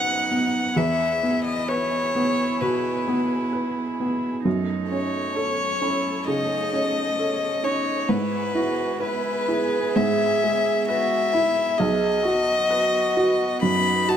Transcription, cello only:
0.00 0.76 D#4 medium
0.76 4.41 E4 medium
4.45 5.38 D#4 medium
5.37 5.84 C#4 medium
5.82 6.28 E4 medium
6.27 7.17 D#4 medium
7.18 7.65 C#4 medium
7.64 8.11 D#4 medium
8.09 8.57 E4 medium
8.55 9.03 F#4 medium
9.01 9.50 E4 medium
9.49 10.88 G#4 medium
10.89 11.34 F#4 medium
11.33 11.80 E4 medium
11.78 12.25 G#4 medium
12.24 13.63 F#4 medium
13.61 14.17 D#4 medium

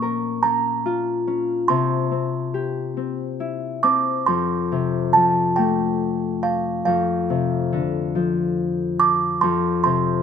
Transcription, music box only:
0.00 0.39 C#6 loud
0.43 1.72 A#5 medium
1.68 3.35 C6 medium
3.83 4.28 D6 medium
4.26 5.17 C6 medium
5.13 5.58 A5 medium
5.56 6.46 G5 medium
6.43 6.62 F5 medium
6.85 7.78 F5 medium
9.00 9.39 D6 medium
9.41 9.81 C6 medium
9.84 10.23 C6 medium

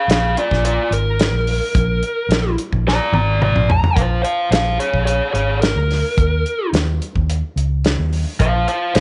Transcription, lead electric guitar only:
0.11 0.36 G#4 medium
0.11 0.37 F5 medium
0.38 0.63 F4 medium
0.38 0.64 D5 loud
0.66 0.91 F4 medium
0.66 0.92 D5 medium
0.93 2.54 A#4 loud
2.88 3.13 D5 medium
2.88 3.14 A#5 loud
3.14 3.40 D5 medium
3.14 3.41 A#5 medium
3.43 3.68 D5 medium
3.43 3.69 A#5 medium
3.71 3.96 A#5 loud
3.96 4.22 C5 medium
3.96 4.23 F5 medium
4.23 4.49 C5 medium
4.23 4.51 F5 medium
4.52 4.78 C5 medium
4.52 4.79 F5 medium
4.79 5.04 G#4 medium
4.79 5.05 C#5 medium
5.05 5.32 G#4 medium
5.05 5.33 C#5 medium
5.33 5.59 G#4 medium
5.33 5.61 C#5 medium
5.61 6.69 A#4 medium
8.40 8.67 C5 medium
8.40 8.67 F5 loud
8.68 8.94 C5 medium
8.68 8.95 F5 medium
8.95 9.00 C5 medium
8.95 9.00 F5 medium

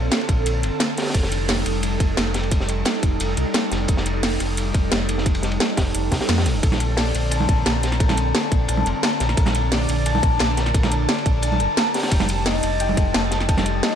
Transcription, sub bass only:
0.00 0.10 A#1 medium
0.29 0.65 A#1 medium
0.63 0.71 F1 medium
1.15 1.65 F1 medium
1.66 1.99 F1 medium
2.00 2.16 F1 medium
2.17 2.85 F1 loud
3.03 3.19 F1 medium
3.20 3.36 F1 medium
3.37 3.45 C2 medium
3.72 3.87 F1 loud
3.89 4.39 F1 loud
4.40 4.73 F1 medium
4.75 4.90 F1 medium
4.92 5.59 F1 medium
5.77 5.93 F1 medium
5.95 6.10 F1 medium
6.12 6.20 C2 medium
6.29 6.47 F2 medium
6.46 6.56 A1 medium
6.55 6.62 D#1 medium
6.63 7.13 A#1 loud
7.15 7.48 A#1 medium
7.49 7.64 A#1 medium
7.66 8.33 A#1 medium
8.52 8.67 A#1 medium
8.69 8.84 A#1 medium
8.86 8.94 F1 medium
9.20 9.36 A#1 medium
9.37 9.88 A#1 medium
9.89 10.22 A#1 medium
10.23 10.39 A#1 medium
10.40 11.08 A#1 medium
11.26 11.62 A#1 medium
11.60 11.68 F1 medium
12.12 12.62 F1 loud
12.63 12.96 F1 medium
12.97 13.13 F1 medium
13.15 13.82 F1 loud

